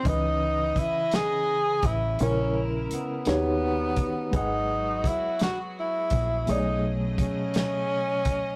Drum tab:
HH |x-xx-x|x-xx-x|x-xx-x|x-xx-x|
SD |---o--|---o--|---o--|---o--|
BD |o-o--o|-----o|o-o--o|--o--o|